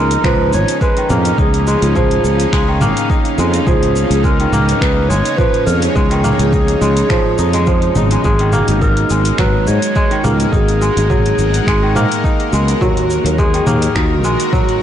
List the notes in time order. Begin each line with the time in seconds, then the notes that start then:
Already playing: C#2 C#3 D#3 F3 G#3 A#3 B3 C#4 D#4 G#4 A#4 A#5
0.11 closed hi-hat, cabasa
0.24 C#2 F3 B4, finger snap, kick, mid tom, cabasa
0.53 G#1 C#5, cabasa
0.68 closed hi-hat, cabasa
0.73 F5
0.81 G#3 B4, kick, cabasa
0.97 D#3, closed hi-hat
1.09 F2 F3 A#3 B3 C#4 G#4 A#4, mid tom, cabasa
1.25 closed hi-hat, cabasa
1.38 C#2 F3 C#4 D#4 G#4, kick, cabasa
1.54 closed hi-hat
1.67 G#3, cabasa
1.80 C#2 F3 C#4, closed hi-hat, cabasa
1.85 G#4
1.96 F3, kick, mid tom, cabasa
2.11 closed hi-hat
2.24 C#2, cabasa
2.40 closed hi-hat, cabasa
2.53 C#2 G#3, finger snap, kick, cabasa
2.68 D#3
2.81 G#1 A#3, mid tom, cabasa
2.97 closed hi-hat, cabasa
3.10 D#4, kick, cabasa
3.25 closed hi-hat
3.38 F2 F3 G#3 B3 C#4 G#4, cabasa
3.54 closed hi-hat, cabasa
3.66 C#2 F3 B3 G#4, kick, mid tom, cabasa
3.83 closed hi-hat
3.96 cabasa
4.09 C#2 F3 C#4, closed hi-hat, cabasa
4.13 G#4
4.22 G#3 A#4 C#5, kick, cabasa
4.40 D#3, closed hi-hat
4.52 C#2 A#3, mid tom, cabasa
4.69 closed hi-hat, cabasa
4.81 C#2 D#4 B4, finger snap, kick, cabasa
5.09 G#1 G#3 C#5, cabasa
5.25 closed hi-hat, cabasa
5.37 F3 B4, kick, mid tom, cabasa
5.54 closed hi-hat
5.66 F2 F3 B3 C#4 G#4 A#4, cabasa
5.82 closed hi-hat, cabasa
5.94 C#2 F3 G#3 B3 C#4 G#4, kick, cabasa
6.11 D#3, closed hi-hat
6.24 A#3, mid tom, cabasa
6.37 C#2 F3 C#4, closed hi-hat, cabasa
6.42 G#4
6.53 D#4, kick, cabasa
6.68 closed hi-hat
6.81 C#2 G#3, cabasa
6.97 closed hi-hat, cabasa
7.10 F3, finger snap, kick, mid tom, cabasa
7.38 F2 D#4, cabasa
7.53 G#3, closed hi-hat, cabasa
7.67 F3, kick, cabasa
7.82 closed hi-hat
7.95 G#1 F3 B3 C#4 D#4 G#4, mid tom, cabasa
8.11 G#3, closed hi-hat, cabasa
8.23 G#1 F#3 G#3 B3 D#4 G#4, kick, cabasa
8.39 D#3, closed hi-hat
8.53 A#3, mid tom, cabasa
8.66 G#1 F#3 D#4 G#4, closed hi-hat, cabasa
8.81 D#4 A#4, kick, cabasa
8.97 closed hi-hat
9.10 G#1 G#3, cabasa
9.25 closed hi-hat, cabasa
9.38 G#1 F#3 B4, finger snap, kick, mid tom, cabasa
9.48 A#4
9.67 G#2 C#5, cabasa
9.82 closed hi-hat, cabasa
9.96 G#3, kick, cabasa
10.11 D#3, closed hi-hat
10.23 C#2 F#3 A#3 B3 D#4 G#4 A#4, mid tom, cabasa
10.33 F#5
10.40 closed hi-hat, cabasa
10.52 G#1 F#3 D#4 G#4, kick, cabasa
10.68 closed hi-hat
10.82 G#3, cabasa
10.94 G#1 F#3 D#4, closed hi-hat, cabasa
10.98 G#4
11.10 F#3, kick, mid tom, cabasa
11.26 closed hi-hat
11.39 G#1, cabasa
11.54 closed hi-hat, cabasa
11.67 G#1 G#3, finger snap, kick, cabasa
11.83 D#3
11.95 G#2 A#3, mid tom, cabasa
12.12 closed hi-hat, cabasa
12.24 D#4, kick, cabasa
12.40 closed hi-hat
12.52 C#2 F#3 G#3 B3 D#4 G#4, cabasa
12.68 closed hi-hat, cabasa
12.80 D#2 D#3 F#3 A#3 D#4 F#4 A#4, kick, mid tom, cabasa
12.97 closed hi-hat
13.10 cabasa
13.19 A#4
13.23 D#2 F#3 A#3 D#4 A#4, closed hi-hat, cabasa
13.38 G#3 G#4, kick, cabasa
13.54 D#3, closed hi-hat
13.66 D#2 A#3 F#4, mid tom, cabasa
13.82 closed hi-hat, cabasa
13.95 D#2 D#4 F#4, finger snap, kick, cabasa
14.24 A#1 G#3, cabasa
14.40 closed hi-hat, cabasa
14.53 F#3, kick, mid tom, cabasa
14.69 closed hi-hat